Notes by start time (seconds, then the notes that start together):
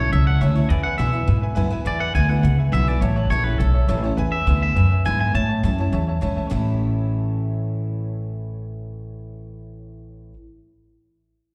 Already playing: B1 E4
0.00 C#4 C#5
0.12 C#2 E2 C#5 E5 A5
0.26 C#5 E5 F#5 A5
0.41 D2 E3 A3 C#4 E4 C#5 E5 A5
0.55 C#4 E4 C#5 E5 A5
0.69 E2 B4 D5 E5 G#5
0.83 B4 E5 F#5 G#5
0.98 B2 D3 G#3 B3 E4 B4 E5 G#5
1.13 B3 E4 B4 E5 G#5
1.27 G#2 B2 B4 E5 G#5
1.41 B4 E5 G#5
1.55 F#2 D3 G#3 B3 E4 B4 E5 G#5
1.70 B3 E4 B4 E5 G#5, muted upright bass stroke
1.85 E2 B4 D5 E5 G#5
1.99 B4 E5 F#5 G#5
2.13 D2 D3 G#3 B3 E4 B4 E5 G#5
2.28 B3 E4 B4 E5 F#5 G#5
2.42 C#2 B2 B4 E5 G#5
2.57 B4 E5 G#5
2.72 B1 D3 G#3 B3 E4 B4 E5 G#5
2.87 B3 E4 B4 D5 E5 G#5
3.00 A1 A2 C#5 E5 A5
3.15 B4 C#5 E5 A5
3.30 A#1 E3 A3 C#4 E4 C#5 E5 A5
3.44 B4 C#5 E5 A5
3.58 B1 E2 A4 C#5 E5 A5
3.73 C#5 E5 A5
3.88 A1 E3 A3 C#4 E4 C#5 E5 A5
4.03 C#4 E4 C#5 E5 A5
4.17 E2 B4 E5 G#5
4.32 B4 E5 G#5
4.46 D2 D3 G#3 B3 E4 B4 E5 G#5
4.61 B4 E5 G#5
4.76 F#2 B2 B4 E5 G#5
4.90 B4 E5 G#5
5.04 G#2 D3 G#3 B3 E4 B4 E5 G#5
5.19 B4 E5 G#5
5.34 A2 C#5 E5 A5
5.48 C#5 E5 A5
5.63 F#2 E3 A3 C#4 E4 C#5 E5 A5
5.78 C#4 E4 C#5 E5 A5
5.92 E2 C#5 E5 A5
6.07 C#5 E5 A5
6.21 G#2 E3 A3 C#4 E4 C#5 E5 A5
6.36 C#5 E5 A5, muted upright bass stroke
6.47 A2 E3 C#5
6.51 A1 A3 C#4 E4 E5
6.55 A5